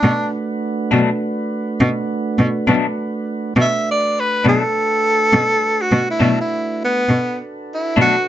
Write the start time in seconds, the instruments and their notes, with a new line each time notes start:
Already playing: tenor saxophone D4
0.03 cello B2, tonewheel organ A3 D4 F#4 B4
0.91 cello B2, clean electric guitar B2 F#3 A3 D4
1.80 cello B2
2.38 cello B2
2.67 cello B2, clean electric guitar B2 F#3 A3 D4
3.56 cello B2, tonewheel organ A3 D4 F#4 B4
3.61 tenor saxophone E5
3.91 tenor saxophone D5
4.20 tenor saxophone B4
4.44 cello B2, clean electric guitar B2 F#3 A3 D4
4.49 tenor saxophone A4
5.33 cello B2
5.81 tenor saxophone F#4
5.92 cello B2
6.11 tenor saxophone E4
6.19 cello B2, clean electric guitar B2 F#3 A3 D4
6.41 tenor saxophone E4
6.84 tenor saxophone B3
7.09 cello B2, tonewheel organ D4 F#4 A4 B4
7.74 tenor saxophone E4
7.96 cello B2, clean electric guitar B2 F#3 A3 D4
8.01 tenor saxophone F#4